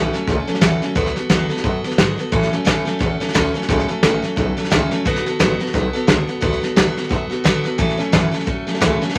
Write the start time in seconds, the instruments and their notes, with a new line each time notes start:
Already playing: upright bass B1, steel-string acoustic guitar A2 E3 F#3 A3 C#4 A4
0.13 steel-string acoustic guitar F#3 A3 C#4 A4, snare
0.27 upright bass C#2, steel-string acoustic guitar F#3 A3 C#4 A4, kick, snare
0.47 steel-string acoustic guitar F#3 A3 C#4 A4, muted upright bass stroke, snare
0.55 snare
0.61 upright bass E2, steel-string acoustic guitar A2 E3 F#3 A3 C#4 A4, kick, snare, hi-hat pedal
0.82 steel-string acoustic guitar F#3 A3 C#4 A4, muted upright bass stroke, snare
0.95 upright bass D2, steel-string acoustic guitar D3 F#3 B3 F#4 A4, kick, snare
1.06 snare
1.16 steel-string acoustic guitar B3 F#4 A4, muted upright bass stroke, snare
1.29 upright bass E2, steel-string acoustic guitar D3 F#3 B3 F#4 A4, kick, snare, hi-hat pedal
1.49 steel-string acoustic guitar B3 F#4 A4, muted upright bass stroke, snare
1.57 snare
1.63 upright bass F#2, steel-string acoustic guitar F#3 B3 F#4 A4, kick, snare
1.84 steel-string acoustic guitar B3 F#4 A4, muted upright bass stroke, snare
1.91 snare
1.98 upright bass G#2, steel-string acoustic guitar D3 F#3 B3 F#4 A4, kick, snare, hi-hat pedal
2.18 steel-string acoustic guitar B3 F#4 A4, snare
2.32 steel-string acoustic guitar A2 E3 F#3 A3 C#4 A4, upright bass A2, kick, snare
2.42 snare
2.51 steel-string acoustic guitar F#3 A3 C#4 A4, muted upright bass stroke, snare
2.65 steel-string acoustic guitar A2 E3 F#3 A3 C#4 A4, kick, snare, hi-hat pedal
2.85 steel-string acoustic guitar F#3 A3 C#4 A4, muted upright bass stroke, snare
2.99 upright bass E2, steel-string acoustic guitar F#3 A3 C#4 A4, kick, snare
3.20 steel-string acoustic guitar F#3 A3 C#4 A4, muted upright bass stroke, snare
3.28 snare
3.33 upright bass D2, steel-string acoustic guitar A2 E3 F#3 A3 C#4 A4, kick, snare, hi-hat pedal
3.54 steel-string acoustic guitar F#3 A3 C#4 A4, snare
3.62 snare
3.68 upright bass C#2, steel-string acoustic guitar A2 E3 F#3 A3 C#4 A4, kick, snare
3.79 snare
3.88 steel-string acoustic guitar F#3 A3 C#4 A4, muted upright bass stroke, snare
4.03 upright bass A1, steel-string acoustic guitar A2 E3 F#3 A3 C#4 A4, kick, snare, hi-hat pedal
4.22 steel-string acoustic guitar F#3 A3 C#4 A4, muted upright bass stroke, snare
4.36 upright bass B1, steel-string acoustic guitar F#3 A3 C#4 A4, kick, snare
4.57 steel-string acoustic guitar F#3 A3 C#4 A4, muted upright bass stroke, snare
4.64 snare
4.70 upright bass C#2, steel-string acoustic guitar A2 E3 F#3 A3 C#4 A4, kick, snare, hi-hat pedal
4.91 steel-string acoustic guitar F#3 A3 C#4 A4, muted upright bass stroke, snare
5.05 upright bass D2, steel-string acoustic guitar D3 F#3 B3 F#4 A4, kick, snare
5.16 snare
5.26 steel-string acoustic guitar B3 F#4 A4, muted upright bass stroke, snare
5.39 upright bass A1, steel-string acoustic guitar D3 F#3 B3 F#4 A4, kick, snare, hi-hat pedal
5.60 steel-string acoustic guitar B3 F#4 A4, muted upright bass stroke, snare
5.67 snare
5.73 upright bass B1, steel-string acoustic guitar F#3 B3 F#4 A4, kick, snare
5.93 steel-string acoustic guitar B3 F#4 A4, snare
6.07 upright bass C#2, steel-string acoustic guitar D3 F#3 B3 F#4 A4, kick, snare, hi-hat pedal
6.28 steel-string acoustic guitar B3 F#4 A4, muted upright bass stroke, snare
6.41 upright bass D2, steel-string acoustic guitar D3 F#3 B3 F#4 A4, kick, snare
6.53 snare
6.62 steel-string acoustic guitar B3 F#4 A4, muted upright bass stroke, snare
6.76 upright bass E2, steel-string acoustic guitar D3 F#3 B3 F#4 A4, kick, snare, hi-hat pedal
6.96 steel-string acoustic guitar B3 F#4 A4, snare
7.04 snare
7.09 upright bass F#2, steel-string acoustic guitar F#3 B3 F#4 A4, kick, snare
7.30 steel-string acoustic guitar B3 F#4 A4, muted upright bass stroke, snare
7.44 upright bass G#2, steel-string acoustic guitar D3 F#3 B3 F#4 A4, kick, snare, hi-hat pedal
7.64 steel-string acoustic guitar B3 F#4 A4, muted upright bass stroke, snare
7.78 steel-string acoustic guitar A2 E3 F#3 A3 C#4 A4, upright bass A2, kick, snare
7.90 snare
7.97 steel-string acoustic guitar F#3 A3 C#4 A4, muted upright bass stroke, snare
8.12 upright bass F#2, steel-string acoustic guitar A2 E3 F#3 A3 C#4 A4, kick, snare, hi-hat pedal
8.31 steel-string acoustic guitar F#3 A3 C#4 A4, muted upright bass stroke, snare
8.40 snare
8.46 upright bass E2, steel-string acoustic guitar F#3 A3 C#4 A4, kick, snare
8.67 steel-string acoustic guitar F#3 A3 C#4 A4, snare
8.75 snare
8.80 upright bass C#2, steel-string acoustic guitar A2 E3 F#3 A3 C#4 A4, kick, snare, hi-hat pedal
9.01 steel-string acoustic guitar F#3 A3 C#4 A4, snare
9.09 snare
9.15 steel-string acoustic guitar A2